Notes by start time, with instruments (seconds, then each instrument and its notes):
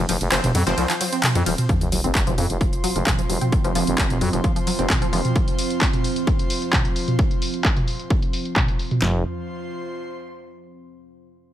0.09 fm bass F1, synth arpeggio sound F3, open hi-hat, ride
0.21 fm bass F1, closed hi-hat, ride
0.32 fm bass F1, supersaw synth F3 C4 C5, clap, closed hi-hat, ride
0.44 fm bass F1, closed hi-hat, mid tom, ride
0.55 fm bass F2, synth arpeggio sound F#3, open hi-hat, ride
0.67 fm bass F1, supersaw synth F3 C4 C5, synth arpeggio sound F3, closed hi-hat, ride
0.78 fm bass C2, synth arpeggio sound F3, closed hi-hat, ride
0.90 synth arpeggio sound F3, clap, closed hi-hat, ride
1.01 synth arpeggio sound F#3, open hi-hat, ride
1.12 synth arpeggio sound C4, closed hi-hat, ride
1.23 clap, closed hi-hat, mid tom, ride
1.35 fm bass F2, synth arpeggio sound F3, closed hi-hat, ride
1.46 fm bass D#1, synth arpeggio sound F3, open hi-hat, ride
1.58 closed hi-hat, mid tom, ride
1.69 synth arpeggio sound F3, ambient pad F3 C4, analog synth pad F4, kick, closed hi-hat, sub drop
1.78 fm bass F1, synth arpeggio sound F3, analog synth pad C5, closed hi-hat
1.92 fm bass F1, synth arpeggio sound F#3, open hi-hat
1.98 analog synth pad C6
2.04 fm bass F1, synth arpeggio sound C4, closed hi-hat
2.15 fm bass F1, kick, clap, closed hi-hat
2.27 fm bass F1, synth arpeggio sound F3, closed hi-hat, mid tom
2.38 fm bass F2, synth arpeggio sound F3, open hi-hat
2.50 fm bass F1, closed hi-hat
2.61 kick, closed hi-hat
2.73 closed hi-hat
2.84 synth arpeggio sound F#3, open hi-hat
2.96 fm bass F1, synth arpeggio sound F3, closed hi-hat
3.07 synth arpeggio sound F3, kick, clap, closed hi-hat, mid tom
3.19 synth arpeggio sound F3, closed hi-hat
3.29 fm bass F1, synth arpeggio sound F#3, open hi-hat
3.41 synth arpeggio sound C4, closed hi-hat, mid tom
3.52 kick, closed hi-hat
3.64 fm bass F1, synth arpeggio sound F3, closed hi-hat
3.75 fm bass F1, synth arpeggio sound F3, open hi-hat
3.87 fm bass F1, closed hi-hat
3.98 fm bass F1, kick, clap, closed hi-hat
4.10 fm bass F1, closed hi-hat, mid tom
4.21 fm bass F2, synth arpeggio sound F#3, open hi-hat
4.33 fm bass F1, synth arpeggio sound F3, closed hi-hat
4.44 synth arpeggio sound F3, kick, closed hi-hat
4.56 synth arpeggio sound F3, closed hi-hat
4.67 synth arpeggio sound F#3, open hi-hat
4.79 fm bass F1, synth arpeggio sound C4, closed hi-hat
4.90 kick, clap, closed hi-hat, mid tom
5.02 synth arpeggio sound F3, closed hi-hat
5.13 fm bass F1, synth arpeggio sound F3, open hi-hat
5.25 closed hi-hat, mid tom
5.36 kick, closed hi-hat
5.48 closed hi-hat
5.59 open hi-hat
5.70 closed hi-hat
5.81 kick, clap, closed hi-hat
5.93 closed hi-hat, mid tom
6.04 open hi-hat
6.16 closed hi-hat
6.27 kick, closed hi-hat
6.39 closed hi-hat
6.50 open hi-hat
6.62 closed hi-hat
6.73 kick, clap, closed hi-hat, mid tom
6.85 closed hi-hat
6.96 open hi-hat
7.08 closed hi-hat, mid tom
7.19 kick, closed hi-hat
7.31 closed hi-hat
7.42 open hi-hat
7.54 closed hi-hat
7.65 kick, clap, closed hi-hat
7.77 closed hi-hat, mid tom
7.88 open hi-hat
8.00 closed hi-hat
8.10 kick, closed hi-hat
8.22 closed hi-hat
8.33 open hi-hat
8.45 closed hi-hat
8.56 kick, clap, closed hi-hat, mid tom
8.68 closed hi-hat
8.79 open hi-hat
8.91 closed hi-hat, mid tom
9.02 fm bass F1, synth arpeggio sound F3, analog synth pad F4, snare, clap, floor tom
9.10 analog synth pad C5
9.16 analog synth pad C6